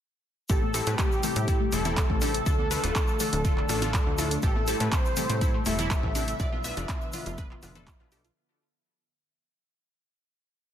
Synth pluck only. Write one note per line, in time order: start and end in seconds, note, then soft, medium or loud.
0.50 0.71 A2 medium
0.50 0.71 C4 medium
0.50 0.71 E4 medium
0.50 0.71 G4 medium
0.50 0.71 A4 medium
0.74 0.84 A2 medium
0.74 0.84 C4 medium
0.74 0.84 E4 medium
0.74 0.84 G4 medium
0.74 0.84 A4 loud
0.87 0.96 A2 medium
0.87 0.96 C4 medium
0.87 0.96 E4 medium
0.87 0.96 G4 medium
0.87 0.96 B4 medium
0.99 1.20 A2 medium
0.99 1.20 C4 medium
0.99 1.20 E4 medium
0.99 1.20 G4 medium
0.99 1.20 A4 medium
1.23 1.45 A2 medium
1.23 1.45 C4 medium
1.23 1.45 E4 medium
1.23 1.45 G4 medium
1.23 1.45 A4 medium
1.48 1.62 A2 medium
1.48 1.62 C4 medium
1.48 1.62 E4 medium
1.48 1.62 G4 medium
1.48 1.62 A4 medium
1.72 1.83 A2 loud
1.72 1.83 C4 medium
1.72 1.83 E4 medium
1.72 1.83 G4 medium
1.72 1.83 A4 loud
1.85 1.95 A2 loud
1.85 1.95 C4 medium
1.85 1.95 E4 medium
1.85 1.95 G4 medium
1.85 1.95 A4 loud
1.97 2.11 A2 medium
1.97 2.11 C4 medium
1.97 2.11 E4 medium
1.97 2.11 A4 medium
2.22 2.43 C4 medium
2.22 2.43 E4 medium
2.22 2.43 G4 medium
2.22 2.43 A4 loud
2.46 2.68 D3 medium
2.46 2.68 A3 medium
2.46 2.68 D4 medium
2.46 2.68 F4 medium
2.46 2.68 A4 medium
2.71 2.81 D3 medium
2.71 2.81 A3 medium
2.71 2.81 D4 medium
2.71 2.81 F4 medium
2.71 2.81 A4 loud
2.84 2.93 D3 medium
2.84 2.93 A3 medium
2.84 2.93 D4 medium
2.84 2.93 F4 medium
2.84 2.93 B4 medium
2.95 3.17 D3 medium
2.95 3.17 A3 medium
2.95 3.17 D4 medium
2.95 3.17 F4 medium
2.95 3.17 A4 medium
3.20 3.42 D3 medium
3.20 3.42 A3 medium
3.20 3.42 D4 medium
3.20 3.42 F4 medium
3.20 3.42 A4 medium
3.45 3.58 D3 medium
3.45 3.58 A3 medium
3.45 3.58 D4 medium
3.45 3.58 F4 medium
3.45 3.58 A4 medium
3.69 3.80 D3 loud
3.69 3.80 A3 medium
3.69 3.80 D4 medium
3.69 3.80 F4 medium
3.69 3.80 A4 loud
3.82 3.92 D3 medium
3.82 3.92 A3 medium
3.82 3.92 D4 medium
3.82 3.92 F4 medium
3.82 3.92 A4 loud
3.94 4.08 D3 medium
3.94 4.08 A3 medium
3.94 4.08 F4 medium
4.18 4.39 A2 medium
4.18 4.39 A3 medium
4.18 4.39 D4 medium
4.18 4.39 F4 medium
4.18 4.39 A4 loud
4.43 4.65 A2 medium
4.43 4.65 C4 medium
4.43 4.65 E4 medium
4.43 4.65 G4 medium
4.43 4.65 A4 medium
4.68 4.77 A2 medium
4.68 4.77 C4 medium
4.68 4.77 E4 medium
4.68 4.77 G4 medium
4.68 4.77 A4 loud
4.80 4.89 A2 medium
4.80 4.89 C4 medium
4.80 4.89 E4 medium
4.80 4.89 G4 medium
4.80 4.89 B4 medium
4.92 5.14 A2 medium
4.92 5.14 C4 medium
4.92 5.14 E4 medium
4.92 5.14 G4 medium
4.92 5.14 A4 medium
5.17 5.39 A2 medium
5.17 5.39 C4 medium
5.17 5.39 E4 medium
5.17 5.39 G4 medium
5.17 5.39 A4 medium
5.41 5.55 A2 medium
5.41 5.55 C4 medium
5.41 5.55 E4 medium
5.41 5.55 G4 medium
5.41 5.55 A4 medium
5.66 5.77 A2 loud
5.66 5.77 C4 medium
5.66 5.77 E4 medium
5.66 5.77 G4 medium
5.66 5.77 A4 loud
5.79 5.89 A2 medium
5.79 5.89 C4 medium
5.79 5.89 E4 medium
5.79 5.89 G4 medium
5.79 5.89 A4 loud
5.91 6.04 A2 medium
5.91 6.04 C4 medium
5.91 6.04 E4 medium
5.91 6.04 G4 medium
5.91 6.04 A4 medium
6.15 6.36 C4 medium
6.15 6.36 E4 medium
6.15 6.36 G4 medium
6.15 6.36 A4 loud
6.40 6.62 B2 medium
6.40 6.62 B3 medium
6.40 6.62 D4 medium
6.40 6.62 F4 medium
6.40 6.62 B4 medium
6.64 6.74 B2 medium
6.64 6.74 B3 medium
6.64 6.74 D4 medium
6.64 6.74 F4 medium
6.64 6.74 B4 loud
6.77 6.86 B2 medium
6.77 6.86 B3 medium
6.77 6.86 D4 medium
6.77 6.86 F4 medium
6.77 6.86 D5 medium
6.89 7.11 B2 medium
6.89 7.11 B3 medium
6.89 7.11 D4 medium
6.89 7.11 F4 medium
6.89 7.11 B4 medium
7.13 7.35 B2 medium
7.13 7.35 B3 medium
7.13 7.35 D4 medium
7.13 7.35 F4 medium
7.13 7.35 B4 medium
7.38 7.52 B2 medium
7.38 7.52 B3 medium
7.38 7.52 D4 medium
7.38 7.52 F4 medium
7.38 7.52 B4 medium
7.63 7.72 B2 loud
7.63 7.72 B3 medium
7.63 7.72 D4 medium
7.63 7.72 F4 medium
7.63 7.72 B4 loud
7.75 7.97 B2 medium
7.75 7.97 B3 medium
7.75 7.97 D4 medium
7.75 7.97 F4 medium
7.75 7.97 B4 loud
8.00 8.10 B2 medium
8.00 8.10 B3 medium
8.00 8.10 D4 medium
8.00 8.10 F4 medium
8.00 8.10 B4 loud
8.12 8.26 B2 medium
8.12 8.26 B3 medium
8.12 8.26 D4 medium
8.12 8.26 F4 medium
8.12 8.26 A4 medium